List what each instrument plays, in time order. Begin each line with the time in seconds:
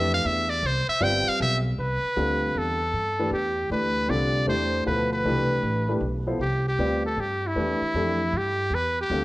Already playing: upright bass F2, grand piano E3 A3 D4 G4 B4, muted trumpet E5
0.14 muted trumpet F5
0.25 upright bass E2, muted trumpet E5
0.50 muted trumpet D5
0.63 upright bass C2, muted trumpet C5
0.88 muted trumpet E5, muted upright bass stroke
1.00 upright bass G1, grand piano G3 C4 F4 B4 D5, muted trumpet G5
1.27 muted trumpet F5, muted upright bass stroke
1.40 upright bass B1, muted trumpet E5
1.78 upright bass C2, muted trumpet B4
2.03 muted upright bass stroke
2.16 upright bass D2, grand piano D3 G3 C4 F4 A4
2.55 upright bass E2, muted trumpet A4
2.93 upright bass G2
3.19 grand piano E3 A3 D4 G4 B4
3.31 upright bass E2, muted trumpet G4
3.70 upright bass D2, grand piano E3 A3 D4 G4 D5, muted trumpet B4
4.09 upright bass C2, grand piano D3 G3 C4 F4 A4, muted trumpet D5
4.47 upright bass E2, grand piano E3 A3 D4 G4 C5, muted trumpet C5
4.86 upright bass D2, grand piano B2 F3 E4 A4 B4, muted trumpet B4
5.13 muted trumpet B4
5.24 upright bass C2, grand piano E3 A3 D4 G4 B4
5.63 upright bass A1
5.89 grand piano E3 A3 D4 G4 B4
6.01 upright bass B1
6.27 grand piano F3 B3 E4 A4 C5
6.39 upright bass C2, muted trumpet G4
6.68 muted trumpet G4
6.78 upright bass D2, grand piano G3 C4 F4 B4 D5
7.06 muted trumpet A4
7.17 upright bass G2, muted trumpet G4
7.47 muted trumpet E4
7.56 upright bass E2, grand piano E3 A3 D4 G4 B4
7.81 muted upright bass stroke
7.94 upright bass F2, grand piano E3 A3 D4 G4 A4
8.32 upright bass G2
8.37 muted trumpet G4
8.70 upright bass E2
8.74 muted trumpet B4
9.01 muted trumpet G4
9.10 upright bass D2, grand piano D3 G3 C4 F4 A4